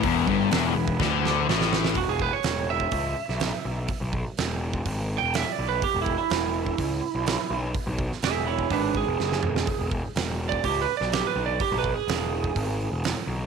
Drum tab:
HH |o---o-----------|o---o---o---o---|o---o---o---o---|o---o---o---o---|
SD |----o---o-o-oooo|----o------oo---|----o-------o---|----o-------o---|
T2 |----------------|----------------|----------------|----------------|
BD |o-o----oo-------|o-o----oo-------|o-o----oo-------|o-o----oo-------|

HH |o---o---o-------|o---o---o---o---|o---o---o---o---|
SD |---oo-------oo-o|----o------oo---|----o-------o---|
T2 |--------------o-|----------------|----------------|
BD |o-o----oo-o-----|o-o----oo-------|o-o----oo-------|